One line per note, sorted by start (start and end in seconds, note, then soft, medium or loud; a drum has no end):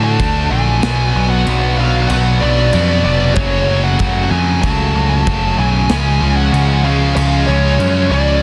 0.00 0.17 A2 medium
0.00 0.17 D3 medium
0.00 0.81 D3 medium
0.00 0.82 F#3 medium
0.00 0.18 A3 loud
0.00 0.81 A3 medium
0.00 0.19 D4 loud
0.00 0.80 D4 medium
0.00 0.81 D4 medium
0.00 0.82 A4 medium
0.00 0.82 F#5 medium
0.00 0.51 A5 loud
0.19 0.48 D2 medium
0.19 0.49 D3 medium
0.19 0.49 A3 medium
0.19 0.50 D4 loud
0.19 kick medium
0.19 crash medium
0.50 0.80 A#1 medium
0.50 0.80 D3 medium
0.50 0.81 A3 medium
0.50 0.81 D4 loud
0.50 1.29 G#5 loud
0.83 1.12 B2 medium
0.83 1.14 F#3 loud
0.83 3.34 B3 medium
0.83 1.14 B3 loud
0.83 1.76 D4 loud
0.83 3.35 F#4 medium
0.83 3.35 D5 medium
0.83 snare loud
0.83 crash medium
1.13 1.44 B1 medium
1.13 1.44 B2 medium
1.13 1.46 F#3 medium
1.13 1.46 B3 loud
1.30 1.74 F#5 loud
1.45 2.06 B1 loud
1.45 1.77 B2 medium
1.45 1.78 F#3 medium
1.45 1.78 B3 medium
1.45 crash medium
1.78 2.09 B2 medium
1.78 2.10 F#3 medium
1.78 2.11 B3 medium
1.78 3.34 D4 medium
1.78 2.01 F5 medium
2.03 2.08 F5 medium
2.08 2.39 B1 loud
2.08 2.39 B2 loud
2.08 2.40 F#3 loud
2.08 2.41 B3 loud
2.08 2.42 F#5 loud
2.08 crash medium
2.40 2.71 B1 medium
2.40 2.71 B2 medium
2.40 2.72 F#3 medium
2.40 2.73 B3 loud
2.40 3.03 D5 loud
2.72 3.02 F2 medium
2.72 3.04 B2 medium
2.72 3.05 F#3 medium
2.72 3.06 B3 loud
2.72 crash medium
3.04 3.33 F1 medium
3.04 3.35 B2 medium
3.04 3.35 F#3 medium
3.04 3.36 B3 loud
3.04 3.34 D5 medium
3.35 3.96 F#1 loud
3.35 3.67 F#2 medium
3.35 3.67 C#3 loud
3.35 3.68 F#3 loud
3.35 4.30 A3 loud
3.35 4.31 C#4 loud
3.35 3.85 C#5 loud
3.35 kick loud
3.35 crash medium
3.39 8.40 C#3 medium
3.39 5.89 F#4 medium
3.39 5.89 A4 medium
3.68 3.98 F#2 medium
3.68 3.99 C#3 medium
3.68 4.00 F#3 medium
3.84 4.22 F#5 medium
3.99 4.28 F#1 medium
3.99 4.30 F#2 medium
3.99 4.31 C#3 medium
3.99 4.32 F#3 medium
3.99 kick medium
3.99 crash medium
4.24 4.31 F#5 medium
4.31 4.60 F2 loud
4.31 4.63 F#2 medium
4.31 4.64 C#3 medium
4.31 4.64 F#3 medium
4.31 5.88 A3 medium
4.31 5.88 C#4 medium
4.31 4.62 G#5 loud
4.62 4.92 C#2 loud
4.62 4.94 F#2 loud
4.62 4.94 C#3 loud
4.62 4.95 F#3 loud
4.62 5.09 A5 loud
4.62 kick medium
4.62 crash medium
4.95 5.23 C#2 loud
4.95 5.24 F#2 medium
4.95 5.24 C#3 medium
4.95 5.26 F#3 loud
5.10 5.58 A5 medium
5.25 5.55 F#1 medium
5.25 5.56 F#2 medium
5.25 5.57 C#3 medium
5.25 5.57 F#3 medium
5.25 kick medium
5.25 crash medium
5.57 5.87 B1 medium
5.57 5.87 F#2 medium
5.57 5.88 C#3 medium
5.57 5.88 F#3 medium
5.57 6.36 G#5 loud
5.89 6.19 C#2 loud
5.89 6.19 C#3 medium
5.89 6.83 F3 medium
5.89 6.20 G#3 loud
5.89 6.21 C#4 loud
5.89 8.40 G#4 medium
5.89 8.41 G#5 medium
5.89 snare loud
5.89 crash medium
6.21 6.50 C#2 medium
6.21 6.51 C#3 medium
6.21 6.51 G#3 medium
6.21 6.52 C#4 medium
6.37 6.86 F#5 loud
6.52 7.12 C#2 loud
6.52 6.82 C#3 medium
6.52 6.83 G#3 medium
6.52 6.84 C#4 medium
6.52 crash medium
6.83 7.14 C#3 medium
6.83 7.15 G#3 medium
6.83 7.15 C#4 loud
6.83 7.14 F5 medium
6.87 8.41 C#3 medium
6.87 8.42 F3 medium
7.15 7.45 C#2 loud
7.15 7.45 C#3 medium
7.15 7.46 G#3 loud
7.15 7.47 C#4 loud
7.15 7.47 F5 loud
7.15 crash medium
7.47 7.77 C#2 medium
7.47 7.77 C#3 medium
7.47 7.78 G#3 loud
7.47 7.79 C#4 loud
7.47 8.11 C#5 medium
7.79 8.08 F#2 loud
7.79 8.10 C#3 loud
7.79 8.11 G#3 medium
7.79 8.11 C#4 loud
7.79 crash medium
8.10 8.39 C#2 medium
8.10 8.41 C#3 medium
8.10 8.42 G#3 medium
8.10 8.42 C#4 medium
8.10 8.42 D5 medium